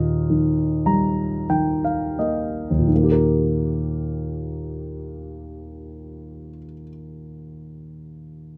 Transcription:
Already playing: D#2 A#2 A#4 D#5
0.30 D#3
0.86 G3 A#5
1.50 D#3 G5
1.85 F5
2.19 A#3 D#5
2.71 D#2
2.79 A#2
2.87 D#3
2.95 A#3
3.04 G4
3.12 A#4

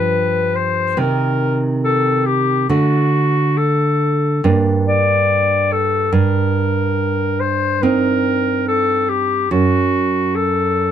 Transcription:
Already playing: G2 F3 D4 B4
0.56 C5
0.97 C3 D#3 D#4 A#4
1.84 A4
2.26 G4
2.69 D3 A3 D4 F#4
3.58 A4
4.44 G2 A#3 D4
4.87 D5
5.72 A4
6.12 G2 A#4
7.40 C5
7.83 C4 D#4 A#4
8.68 A4
9.09 G4
9.51 F#2 F#4
10.35 A4

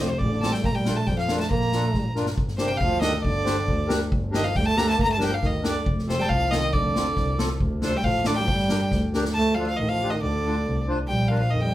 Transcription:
0.00 C4 F4 C5
0.05 C3 C5
0.18 A1 D3 D5, kick
0.41 C4 F4 A4 A5, snare
0.49 G3 G5
0.54 snare
0.62 A#1 A#3 A#5, kick, snare
0.75 G3 G5
0.85 D4 F4 A#4, snare
0.95 A3 A5
1.06 F2 G3 G5, kick, snare
1.15 F3 F5, snare
1.28 D4 F4 A#4, snare
1.39 A3 A5, snare
1.50 A#1 A#3 A#5, kick
1.61 snare
1.72 D4 F4 A4, snare
1.94 A1, kick, snare
2.16 G1 D4 F4 A#4, snare
2.26 snare
2.38 G1, kick
2.48 snare
2.57 C3 D4 G4 A#4 C5, snare
2.68 G5
2.77 D2 F5, kick
2.82 F3
3.01 D#3 D4 G4 A4 D#5, snare
3.15 D#3 D#5
3.22 G1 D3 D5, kick
3.44 D4 G4 C5, snare
3.68 D2, kick
3.88 D4 G4 A#4, snare
4.12 G1, kick
4.31 D#3 D4 G4 A#4, snare
4.36 D#5
4.44 F3 F5
4.56 D2 G3 G5, kick
4.65 A3 A5
4.76 A#3 D4 G4 A4 A#5, snare
4.87 A3 A5
4.97 G1 A#3, kick
5.02 A3 A#5
5.12 A5
5.17 F3 G3 D4 G4 A#4, snare
5.23 G3 G5
5.28 F3
5.34 F5
5.41 D2 D#3, kick, snare
5.46 D#5
5.62 D3 D4 G4 A#4, snare
5.67 D5
5.86 F1, kick
5.99 snare
6.07 C3 C4 F4 A4 C5, snare
6.18 G3 G5 A5
6.24 G3 G5
6.29 C2 F3 F5, kick
6.51 D#3 C4 F4 A4 D#5, snare
6.72 F1 D3 D5, kick
6.95 C4 F4 A4, snare
7.17 C2, kick, snare
7.38 C4 F4 A4, snare
7.60 D2, kick
7.82 C3 D4 F4 A4 C5, snare
7.95 G3 G5
8.03 A1 F3 F5, kick
8.24 D3 D4 F4 A4 D5, snare
8.35 G3 G5
8.46 G1 F3, kick
8.54 G3
8.60 snare
8.69 D4 G4 A#4, snare
8.91 D2, kick, snare
9.14 D4 G4 A#4, snare
9.25 snare
9.33 D2 A3 A5
9.54 F3 D4 A4 F5
9.58 F4
9.67 F3 F5
9.76 A1 D#3 D#5
9.89 F3 F5
10.03 D4 F4 G4
10.10 D#3 D#5
10.22 D2 D3 D5
10.46 D4 F4 A4
10.66 C2
10.88 D4 F4 C5
11.08 A#1 G3 G5
11.28 D4 F4 A#4 F5
11.38 F3 F5
11.50 F2 D#3 D#5
11.61 G3 G5

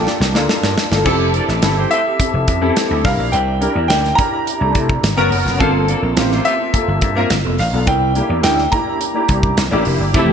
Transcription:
Already playing: A#3 D4 F4 G4 A4 D5 G5
0.07 muted clean electric guitar stroke, snare
0.20 C2, snare
0.34 D2 A#3 D4 F4 A4, snare
0.49 snare
0.63 G2 F4 A#4 D5, snare
0.77 muted clean electric guitar stroke, snare
0.91 G1 A#3 D4 F4 A4, muted clean electric guitar stroke, snare
1.05 F1 C4 E4 G4 A4 E5, kick, crash
1.34 D4 A#4 D5, muted clean electric guitar stroke, closed hi-hat
1.48 A1 G4 A4 E5, snare
1.62 G1 C4 E4 G4 A4 E5, snare, closed hi-hat
1.76 A3 C4 G4 C5, muted clean electric guitar stroke
1.91 A3 C4 G4 C5 E5, muted clean electric guitar stroke, closed hi-hat
2.05 G4 A4 E5
2.19 C4 E4 G4 A4, muted clean electric guitar stroke, kick, closed hi-hat
2.34 F1, muted clean electric guitar stroke
2.48 F2, kick, closed hi-hat
2.61 C4 E4 G4 A4, muted clean electric guitar stroke
2.76 muted clean electric guitar stroke, snare, closed hi-hat
2.90 D2 G4 A4 E5
3.03 C2 D4 E4 G4 A#4 F5, kick, snare, open hi-hat
3.19 A#1, muted clean electric guitar stroke
3.32 C2 A#4 D5 E5 G5, closed hi-hat
3.61 D4 E4 G4 A#4, muted clean electric guitar stroke, closed hi-hat
3.75 E2 A#4 D5 E5
3.88 D2 A#4 D5 E5 G5, snare, closed hi-hat
4.04 muted clean electric guitar stroke, snare
4.15 D4 E4 G4 A#4 A#5, muted clean electric guitar stroke, kick, closed hi-hat
4.32 A#4 D5 E5
4.46 muted clean electric guitar stroke, closed hi-hat
4.60 C2 A3 D4 E4 G4, muted clean electric guitar stroke
4.75 C3, kick, closed hi-hat
4.88 muted clean electric guitar stroke, kick
5.03 G#1, muted clean electric guitar stroke, snare, closed hi-hat
5.17 F#1 B3 C#4 F#4 A#4 B4
5.31 F#1, muted clean electric guitar stroke, open hi-hat
5.45 F1, muted clean electric guitar stroke, snare
5.59 G1 A#3 C4 D4 F4 A4 A#4 C5 F5, kick, closed hi-hat
5.88 A#3 D4 A4 D5, muted clean electric guitar stroke, closed hi-hat
6.02 A#1 C4 F4 A#4
6.16 A1 A#3 C4 F4 G4 A#4, snare, closed hi-hat
6.30 A3 C4 F4 C5, muted clean electric guitar stroke, snare
6.45 A3 C4 F4 C5 E5, muted clean electric guitar stroke, closed hi-hat
6.59 C4 F4 A#4
6.73 A#3 C4 F4 A4, muted clean electric guitar stroke, kick, closed hi-hat
6.88 G1, muted clean electric guitar stroke
7.01 G2, kick, closed hi-hat
7.15 A#3 C4 F4 A#4, muted clean electric guitar stroke
7.30 G1, muted clean electric guitar stroke, snare, closed hi-hat
7.44 F1 B3 F4 A4
7.58 A1 F5, muted clean electric guitar stroke, snare, open hi-hat
7.72 B1 B3 D4 F4 A4, muted clean electric guitar stroke
7.86 C2 E4 A#4 D5 G5, kick, closed hi-hat
8.15 A#3 D4 E4 G4, muted clean electric guitar stroke, closed hi-hat
8.29 E2 E4 A#4 D5
8.43 D2 E4 A#4 D5 G5, snare, closed hi-hat
8.58 muted clean electric guitar stroke, snare
8.72 A#3 D4 E4 G4 A#5, muted clean electric guitar stroke, kick, closed hi-hat
8.86 E4 A#4 D5
9.00 muted clean electric guitar stroke, closed hi-hat
9.14 A#3 D4 E4 G4, muted clean electric guitar stroke
9.29 C2, kick, closed hi-hat
9.43 muted clean electric guitar stroke, kick
9.57 C2, muted clean electric guitar stroke, snare, closed hi-hat
9.71 A1 A#3 D4 E4 G4 A#4 D5
9.85 F1, muted clean electric guitar stroke, open hi-hat
9.99 G1, muted clean electric guitar stroke
10.13 F1 E3 A3 C4 E4 G4 A4 E5, kick, closed hi-hat

